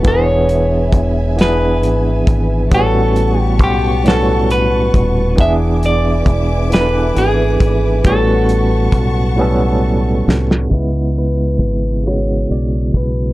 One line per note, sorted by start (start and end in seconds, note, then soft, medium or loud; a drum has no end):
0.00 1.21 E3 medium
0.00 5.34 B4 medium
0.04 0.90 E1 medium
0.04 1.22 B3 medium
0.04 1.22 D4 medium
0.04 0.13 F#4 medium
0.04 1.41 C#5 loud
0.04 2.69 E5 medium
0.04 2.69 G#5 medium
0.04 kick loud
0.04 closed hi-hat medium
0.14 1.26 G#4 medium
0.49 closed hi-hat medium
0.93 1.84 E1 medium
0.93 kick medium
0.93 closed hi-hat soft
1.36 2.54 E3 medium
1.36 2.55 B3 medium
1.36 2.56 D4 medium
1.36 closed hi-hat medium
1.41 2.57 G#4 medium
1.41 2.74 B4 medium
1.41 snare loud
1.83 2.24 G#1 medium
1.83 closed hi-hat medium
2.27 2.68 G#1 medium
2.27 kick medium
2.27 closed hi-hat medium
2.70 3.60 A1 loud
2.70 3.88 A2 medium
2.70 3.88 G3 medium
2.70 3.89 B3 medium
2.70 2.79 C4 medium
2.70 5.36 F#5 medium
2.70 5.36 A5 medium
2.70 5.36 C#6 medium
2.70 kick loud
2.70 closed hi-hat medium
2.74 3.90 F#4 medium
2.74 3.38 A4 loud
2.80 3.93 C#4 medium
3.16 closed hi-hat medium
3.38 3.64 G4 loud
3.59 4.89 B1 loud
3.59 kick medium
3.59 closed hi-hat soft
3.64 4.08 G4 loud
4.03 5.21 A2 medium
4.03 5.22 G3 medium
4.03 5.22 B3 medium
4.03 5.23 C#4 medium
4.03 closed hi-hat medium
4.08 5.24 F#4 medium
4.08 4.51 A4 medium
4.08 snare loud
4.50 5.40 B4 loud
4.50 closed hi-hat medium
4.94 5.35 D#1 medium
4.94 kick medium
4.94 closed hi-hat medium
5.37 6.23 E1 loud
5.37 6.55 E3 medium
5.37 6.55 B3 medium
5.37 6.56 D4 medium
5.37 10.67 B4 medium
5.37 8.02 E5 medium
5.37 5.52 E5 loud
5.37 8.02 G#5 medium
5.37 8.02 D6 medium
5.37 kick loud
5.37 closed hi-hat medium
5.42 6.57 G#4 medium
5.83 6.73 D5 loud
5.83 closed hi-hat medium
6.26 7.12 E1 medium
6.26 kick medium
6.26 closed hi-hat soft
6.70 7.88 E3 medium
6.70 7.88 B3 medium
6.70 7.89 D4 medium
6.70 7.18 B4 loud
6.70 closed hi-hat medium
6.74 6.79 A4 medium
6.74 snare loud
6.81 7.93 B4 medium
7.16 7.57 G#1 medium
7.16 8.06 G#4 medium
7.16 closed hi-hat medium
7.60 8.01 G#1 medium
7.60 kick medium
7.60 closed hi-hat medium
8.03 8.90 A1 loud
8.03 9.21 A2 medium
8.03 9.22 G3 medium
8.03 9.22 B3 medium
8.03 9.23 C#4 medium
8.03 10.24 A4 medium
8.03 10.69 F#5 medium
8.03 10.69 A5 medium
8.03 10.69 C#6 medium
8.03 kick loud
8.03 closed hi-hat medium
8.08 9.24 F#4 medium
8.49 closed hi-hat medium
8.92 10.23 B1 medium
8.92 kick medium
8.92 closed hi-hat soft
9.37 10.54 A2 medium
9.37 10.55 G3 medium
9.37 10.56 B3 medium
9.37 10.56 C#4 medium
9.41 10.57 A4 medium
10.28 10.68 C2 medium
10.28 snare medium
10.51 snare medium
10.70 11.56 C#2 medium
10.70 11.88 C#3 medium
10.70 11.88 G#3 medium
10.70 11.89 B3 medium
10.70 kick medium
10.70 crash medium
10.74 11.90 E4 medium
11.18 12.07 B4 medium
11.59 12.45 G#1 medium
11.59 kick medium
11.59 closed hi-hat medium
12.04 13.21 C#3 medium
12.04 13.22 G#3 medium
12.04 13.23 B3 medium
12.04 12.51 C#5 medium
12.04 closed hi-hat medium
12.08 13.24 F#4 medium
12.08 cross-stick medium
12.51 12.90 B1 medium
12.51 12.92 D5 medium
12.94 13.33 B1 medium
12.94 13.33 B4 medium
12.94 kick medium
12.94 closed hi-hat medium